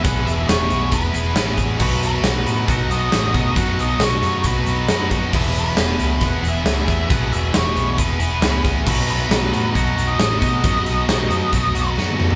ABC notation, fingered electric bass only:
X:1
M:4/4
L:1/8
Q:1/4=136
K:E
V:1 name="Fingered electric bass" clef=bass
B,,, E,,, E,,, B,,, E,,, E,,, A,,,2 | B,,,2 B,,, A,, B,,, B,,, A,,, B,, | F,, B,,, B,,, F,, B,,, B,,, F,,2 | E,,,2 E,,, C,, E,,, E,,, C,, E,, |
B,,, E,,, E,,, B,,, E,,, E,,, C,,2 | B,,,2 B,,, A,, B,,, B,,, A,,, B,, | F,, B,,, B,,, F,, B,,, B,,, F,,2 |]